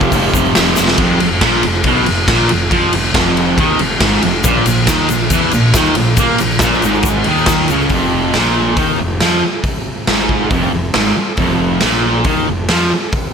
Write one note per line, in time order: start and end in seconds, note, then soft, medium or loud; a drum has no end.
0.00 0.11 F2 medium
0.00 0.14 C3 medium
0.00 0.16 F3 loud
0.00 0.73 F5 loud
0.00 kick loud
0.12 0.30 F1 loud
0.12 0.37 F2 medium
0.12 0.35 C3 medium
0.12 kick loud
0.12 open hi-hat medium
0.12 shaker medium
0.17 0.33 F3 medium
0.33 0.52 F1 medium
0.33 0.58 C3 medium
0.33 0.59 F3 medium
0.33 kick medium
0.33 shaker loud
0.38 0.55 F2 medium
0.45 shaker soft
0.55 0.74 F1 loud
0.55 0.98 F2 medium
0.55 0.81 C3 medium
0.55 snare loud
0.55 open hi-hat medium
0.55 shaker medium
0.60 0.77 F3 medium
0.76 0.96 F1 medium
0.76 0.98 F3 medium
0.76 snare medium
0.76 shaker loud
0.82 1.00 C3 medium
0.88 snare medium
0.98 1.19 F1 medium
0.98 1.20 F2 loud
0.98 kick loud
0.98 ride loud
1.20 1.41 F1 medium
1.20 1.38 F2 medium
1.20 ride medium
1.41 1.62 A#1 loud
1.41 1.63 A#2 medium
1.41 kick loud
1.41 snare loud
1.41 ride loud
1.63 1.84 F1 medium
1.63 1.81 F2 medium
1.63 ride medium
1.84 2.05 B1 loud
1.84 2.07 B2 loud
1.84 kick loud
1.84 ride loud
2.06 2.27 F1 medium
2.06 2.24 F2 medium
2.06 ride medium
2.28 2.48 A#1 loud
2.28 2.49 A#2 loud
2.28 kick loud
2.28 snare loud
2.28 ride loud
2.49 2.71 F1 medium
2.49 2.68 F2 medium
2.49 ride medium
2.71 2.92 F2 medium
2.71 2.93 F3 loud
2.71 kick loud
2.71 ride medium
2.93 3.14 F1 medium
2.93 3.11 F2 medium
2.93 ride medium
3.14 3.55 F1 loud
3.14 3.58 F2 loud
3.14 kick loud
3.14 snare loud
3.14 ride loud
3.37 ride medium
3.58 3.78 D#2 loud
3.58 3.80 D#3 loud
3.58 kick loud
3.58 ride loud
3.79 4.00 F1 medium
3.79 3.97 F2 medium
3.79 ride medium
4.00 4.21 G#1 loud
4.00 4.23 G#2 loud
4.00 kick loud
4.00 snare loud
4.00 ride loud
4.23 4.44 F1 medium
4.23 4.41 F2 medium
4.23 ride medium
4.44 4.64 A#1 loud
4.44 4.66 A#2 loud
4.44 kick loud
4.44 ride loud
4.44 shaker loud
4.66 4.86 A#1 medium
4.66 4.84 A#2 medium
4.66 ride medium
4.66 shaker medium
4.87 5.08 D#2 loud
4.87 5.09 D#3 loud
4.87 kick loud
4.87 snare loud
4.87 ride loud
4.87 shaker loud
5.09 5.29 A#1 medium
5.09 5.28 A#2 medium
5.09 ride medium
5.09 shaker loud
5.30 5.51 E2 loud
5.30 5.53 E3 loud
5.30 kick loud
5.30 ride loud
5.30 shaker loud
5.51 5.72 A#1 medium
5.51 5.71 A#2 medium
5.51 ride medium
5.51 shaker medium
5.74 5.94 D#2 loud
5.74 5.96 D#3 loud
5.74 kick loud
5.74 snare loud
5.74 ride loud
5.74 shaker loud
5.85 shaker soft
5.95 6.16 A#1 medium
5.95 6.14 A#2 medium
5.95 ride medium
6.17 6.38 A#2 medium
6.17 6.39 A#3 loud
6.17 kick loud
6.17 ride loud
6.17 shaker loud
6.38 6.60 A#1 medium
6.38 6.57 A#2 medium
6.38 ride medium
6.38 shaker medium
6.51 shaker soft
6.59 6.81 A#1 loud
6.59 6.83 A#2 loud
6.59 kick loud
6.59 snare loud
6.59 ride medium
6.59 shaker loud
6.73 shaker soft
6.82 7.23 G#1 medium
6.82 7.26 G#2 loud
6.82 ride medium
6.82 shaker medium
6.95 shaker soft
7.03 kick loud
7.03 ride loud
7.03 shaker loud
7.24 7.67 D#2 medium
7.24 7.69 D#3 loud
7.24 ride medium
7.38 shaker soft
7.46 kick loud
7.46 snare loud
7.46 ride loud
7.46 shaker medium
7.68 7.89 C#2 loud
7.68 7.91 C#3 loud
7.68 ride medium
7.68 shaker medium
7.81 shaker soft
7.89 8.31 F1 medium
7.89 8.35 F2 loud
7.89 kick loud
7.89 open hi-hat medium
8.34 8.75 A#1 loud
8.34 8.78 A#2 loud
8.34 snare loud
8.34 open hi-hat medium
8.77 8.98 D#2 medium
8.77 8.99 D#3 medium
8.77 kick loud
8.77 open hi-hat medium
8.99 9.20 F1 medium
8.99 9.17 F2 medium
9.20 9.41 F2 loud
9.20 9.43 F3 loud
9.20 snare loud
9.20 open hi-hat medium
9.64 kick loud
9.64 open hi-hat medium
10.07 10.49 G#1 loud
10.07 10.51 G#2 loud
10.07 snare loud
10.07 open hi-hat medium
10.29 kick medium
10.50 10.72 F1 loud
10.50 10.72 F2 medium
10.50 kick loud
10.50 open hi-hat medium
10.73 10.94 F1 medium
10.73 10.91 F2 medium
10.94 11.16 G#1 loud
10.94 11.16 G#2 loud
10.94 snare loud
10.94 open hi-hat medium
11.17 muted distorted electric guitar stroke medium
11.17 muted fingered electric bass stroke soft
11.37 11.79 F1 medium
11.37 11.82 F2 loud
11.37 kick loud
11.37 open hi-hat medium
11.80 12.24 A#1 loud
11.80 12.26 A#2 loud
11.80 snare loud
11.80 open hi-hat medium
12.24 12.46 D#2 medium
12.24 12.47 D#3 medium
12.24 kick loud
12.24 open hi-hat medium
12.48 12.69 F1 medium
12.48 12.66 F2 medium
12.68 12.91 F2 loud
12.68 12.91 F3 loud
12.68 snare loud
12.68 open hi-hat medium
13.12 kick loud
13.12 open hi-hat medium